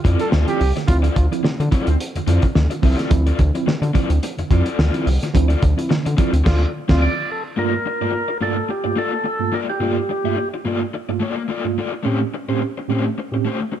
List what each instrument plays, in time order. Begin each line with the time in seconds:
0.04 analog synth bass F2, tine electric piano F3 C4 E4, overdriven electric guitar C4 F4 A4 D5, kick, closed hi-hat
0.19 overdriven electric guitar C4 F4 A4 D5, trombone A4, closed hi-hat
0.31 analog synth bass D2, overdriven electric guitar C4 F4 A4 D5, snare
0.47 tine electric piano F3 C4 E4, trombone G4, closed hi-hat
0.60 analog synth bass C2, muted overdriven electric guitar stroke, open hi-hat
0.76 tine electric piano D3, muted overdriven electric guitar stroke, snare, closed hi-hat
0.87 analog synth bass D2, tine electric piano F3 C4 E4, trombone F4, muted overdriven electric guitar stroke, kick, closed hi-hat
1.02 overdriven electric guitar C4 F4 A4 D5, closed hi-hat
1.15 analog synth bass D2, tine electric piano D3, trombone F4, muted overdriven electric guitar stroke, kick, closed hi-hat
1.31 tine electric piano F3 C4 E4, muted overdriven electric guitar stroke, closed hi-hat
1.43 tine electric piano D3, analog synth bass D3, muted overdriven electric guitar stroke, snare
1.60 analog synth bass D3, muted overdriven electric guitar stroke, closed hi-hat
1.71 tine electric piano F3 C4 E4, overdriven electric guitar C4 F4 A4 D5, kick, closed hi-hat
1.87 analog synth bass D2, tine electric piano C4 E4, muted overdriven electric guitar stroke, closed hi-hat
2.00 tine electric piano C4 E4, closed hi-hat
2.15 analog synth bass F2, tine electric piano D3, muted overdriven electric guitar stroke, closed hi-hat
2.27 analog synth bass F2, tine electric piano F3 C4 E4, overdriven electric guitar C4 F4 A4 D5, closed hi-hat
2.42 muted overdriven electric guitar stroke, kick, closed hi-hat
2.55 analog synth bass D2, tine electric piano D3, muted overdriven electric guitar stroke, snare
2.70 muted overdriven electric guitar stroke, closed hi-hat
2.82 analog synth bass C2, tine electric piano F3 C4 E4, overdriven electric guitar C4 F4 A4 E5, kick, open hi-hat
2.98 tine electric piano C4 E4, overdriven electric guitar C4 F4 A4 D5, snare, closed hi-hat
3.10 analog synth bass D2, tine electric piano F3 C4 E4, muted overdriven electric guitar stroke, kick, closed hi-hat
3.27 overdriven electric guitar C4 F4 A4 D5, closed hi-hat
3.38 analog synth bass D2, tine electric piano D3, muted overdriven electric guitar stroke, kick, closed hi-hat
3.54 tine electric piano F3 C4 E4, muted overdriven electric guitar stroke, closed hi-hat
3.66 tine electric piano D3, analog synth bass D3, muted overdriven electric guitar stroke, snare
3.82 analog synth bass D3, muted overdriven electric guitar stroke, closed hi-hat
3.94 tine electric piano F3 C4 E4, overdriven electric guitar C4 F4 A4 D5, kick, closed hi-hat
4.10 analog synth bass D2, tine electric piano C4 E4, muted overdriven electric guitar stroke, closed hi-hat
4.22 tine electric piano C4 E4, muted overdriven electric guitar stroke, closed hi-hat
4.38 analog synth bass F2, tine electric piano D3, muted overdriven electric guitar stroke, closed hi-hat
4.50 analog synth bass F2, tine electric piano F3 C4 E4, overdriven electric guitar C4 F4 A4 D5, kick, closed hi-hat
4.66 overdriven electric guitar C4 F4 A4 D5, closed hi-hat
4.79 analog synth bass D2, overdriven electric guitar C4 F4 A4 D5, snare
4.94 tine electric piano F3 C4 E4, closed hi-hat
5.07 analog synth bass C2, muted overdriven electric guitar stroke, open hi-hat
5.22 tine electric piano D3, muted overdriven electric guitar stroke, snare, closed hi-hat
5.33 analog synth bass D2, tine electric piano F3 C4 E4, muted overdriven electric guitar stroke, kick, closed hi-hat
5.49 overdriven electric guitar C4 F4 A4 D5, closed hi-hat
5.62 analog synth bass D2, tine electric piano D3, muted overdriven electric guitar stroke, kick, closed hi-hat
5.77 tine electric piano F3 C4 E4, muted overdriven electric guitar stroke, closed hi-hat
5.89 tine electric piano D3, analog synth bass D3, muted overdriven electric guitar stroke, snare
6.06 analog synth bass D3, muted overdriven electric guitar stroke, closed hi-hat
6.17 tine electric piano F3 C4 E4, overdriven electric guitar C4 F4 A4 D5, kick, closed hi-hat
6.33 analog synth bass D2, tine electric piano C4 E4, muted overdriven electric guitar stroke, closed hi-hat
6.44 analog synth bass D2, overdriven electric guitar C4 F4 A4 D5, trombone F4, kick, snare, crash
6.88 analog synth bass D2, tine electric piano F3 C4, overdriven electric guitar C4 F4 A4 D5, trombone F4, kick, snare, crash
7.02 tonewheel organ D5
7.32 tonewheel organ A4
7.57 tine electric piano G2 A3 A#3 F4, overdriven electric guitar A#3 F4 A4 D5, tonewheel organ A#4
7.73 muted overdriven electric guitar stroke
7.86 muted overdriven electric guitar stroke
8.01 tine electric piano G2 A3 A#3 F4, overdriven electric guitar A#3 F4 A4 D5
8.12 tine electric piano A#3 F4, muted overdriven electric guitar stroke
8.28 muted overdriven electric guitar stroke
8.41 tine electric piano G2 A3 A#3 F4, overdriven electric guitar A#3 F4 A4 D5, tonewheel organ A4
8.56 muted overdriven electric guitar stroke
8.69 tonewheel organ G4, muted overdriven electric guitar stroke
8.84 tine electric piano G2 A3 A#3 F4, muted overdriven electric guitar stroke
8.96 overdriven electric guitar A#3 F4 A4 D5, tonewheel organ A4
9.12 muted overdriven electric guitar stroke
9.24 muted overdriven electric guitar stroke
9.40 tine electric piano G2 A3 A#3 F4
9.52 overdriven electric guitar A#3 F4 A4 D5, tonewheel organ A#4
9.69 tonewheel organ G4, muted overdriven electric guitar stroke
9.80 tine electric piano G2 A3 A#3 F4, overdriven electric guitar A#3 F4 A4 D5
9.98 muted overdriven electric guitar stroke
10.10 muted overdriven electric guitar stroke
10.24 tine electric piano G2 A3 A#3 F4, overdriven electric guitar A#3 F4 A4 E5
10.37 tine electric piano A#3 F4, muted overdriven electric guitar stroke
10.54 muted overdriven electric guitar stroke
10.65 tine electric piano G2 A3 A#3 F4, overdriven electric guitar A#3 F4 A4 D5
10.81 muted overdriven electric guitar stroke
10.94 muted overdriven electric guitar stroke
11.09 tine electric piano G2 A3 A#3 F4, muted overdriven electric guitar stroke
11.20 overdriven electric guitar A#3 F4 A4 D5
11.37 muted overdriven electric guitar stroke
11.48 overdriven electric guitar A#3 F4 A4 D5
11.64 tine electric piano G2 A3 A#3 F4, muted overdriven electric guitar stroke
11.78 overdriven electric guitar A#3 F4 A4 D5
11.93 muted overdriven electric guitar stroke
12.03 tine electric piano A2 C4 C#4 G4, overdriven electric guitar A3 C#4 G4 C5
12.19 muted overdriven electric guitar stroke
12.34 muted overdriven electric guitar stroke
12.48 tine electric piano A2 C4 C#4 G4, overdriven electric guitar A3 C#4 G4 C5
12.61 tine electric piano C#4 G4, muted overdriven electric guitar stroke
12.78 muted overdriven electric guitar stroke
12.88 tine electric piano A2 C4 C#4 G4, overdriven electric guitar A3 C#4 G4 C5
13.05 muted overdriven electric guitar stroke
13.18 muted overdriven electric guitar stroke
13.31 tine electric piano A2 C4 C#4 G4, muted overdriven electric guitar stroke
13.45 overdriven electric guitar A3 C#4 G4 C5
13.61 muted overdriven electric guitar stroke
13.72 muted overdriven electric guitar stroke